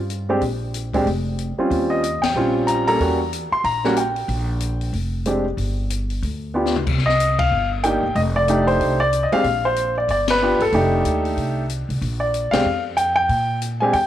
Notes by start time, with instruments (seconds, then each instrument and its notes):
Already playing: upright bass G2
0.10 closed hi-hat
0.29 grand piano G#3 C4 D4 G4
0.41 upright bass A#1, kick, open hi-hat
0.74 closed hi-hat
0.94 grand piano G#3 C4 D4 G4, kick, open hi-hat
1.06 upright bass F1, kick, open hi-hat
1.39 closed hi-hat
1.58 grand piano G3 C4 C#4 F4, muted upright bass stroke
1.70 upright bass D#2, kick, open hi-hat
1.90 grand piano D#5
2.04 closed hi-hat
2.22 upright bass E2, grand piano G5, snare, ride
2.34 upright bass A#1, grand piano G3 C4 C#4 F4
2.67 grand piano A#5, closed hi-hat
2.88 grand piano G3 A#3 C#4 A4 A#5, open hi-hat
3.00 upright bass E2, grand piano G3 A#3 C#4 F#4, kick, open hi-hat
3.33 closed hi-hat
3.52 grand piano C6, muted upright bass stroke
3.64 upright bass A#1, grand piano A#5, kick, open hi-hat
3.84 grand piano G3 A#3 C#4 F#4, snare
3.96 grand piano G5, closed hi-hat
4.16 open hi-hat
4.28 upright bass A#1, kick, open hi-hat
4.60 closed hi-hat
4.81 open hi-hat
4.93 upright bass F1, kick, open hi-hat
5.26 grand piano G#3 C4 D4 G4, closed hi-hat
5.57 upright bass G1, kick, open hi-hat
5.90 closed hi-hat
6.10 open hi-hat
6.22 upright bass D2, kick, open hi-hat
6.54 grand piano B3 D4 F4 G4
6.66 snare
6.76 mid tom
6.86 upright bass C2, kick, crash
6.98 snare
7.06 grand piano D#5, snare
7.20 closed hi-hat
7.39 grand piano F5, kick, ride
7.51 upright bass G1
7.84 grand piano A#3 D4 D#4 G4 G5, closed hi-hat
8.03 upright bass G1
8.15 upright bass F1, grand piano D#5, kick, open hi-hat
8.36 grand piano D5
8.48 grand piano A3 D4 D#4 G4, closed hi-hat
8.67 grand piano C5, open hi-hat
8.80 upright bass C2, kick, open hi-hat
9.00 grand piano D5
9.13 closed hi-hat
9.23 grand piano D#5
9.32 grand piano G#3 C4 D4 G4 F5, muted upright bass stroke, open hi-hat
9.44 upright bass A#1, kick, open hi-hat
9.65 grand piano C5
9.76 closed hi-hat
9.98 grand piano D5
10.08 upright bass G1, grand piano D5, kick, open hi-hat
10.28 grand piano B4, snare, ride
10.42 grand piano B3 D4 F4 G4
10.59 upright bass G1, grand piano A4, open hi-hat
10.72 upright bass F1, grand piano A3 D4 D#4 G4, kick, open hi-hat
11.04 upright bass D#2, closed hi-hat
11.25 open hi-hat
11.37 upright bass C2, kick, open hi-hat
11.70 closed hi-hat
11.89 upright bass C2, open hi-hat
12.01 upright bass A#1, kick, open hi-hat
12.20 grand piano D5
12.34 closed hi-hat
12.51 upright bass B1, grand piano G#3 C4 D4 G4 F5, snare, ride
12.65 upright bass F2
12.97 grand piano G5, closed hi-hat
13.16 grand piano G5
13.29 upright bass A#2, kick, open hi-hat
13.62 closed hi-hat
13.80 grand piano G#3 C4 D4 G4 G#5
13.93 upright bass F2, grand piano G5, kick, open hi-hat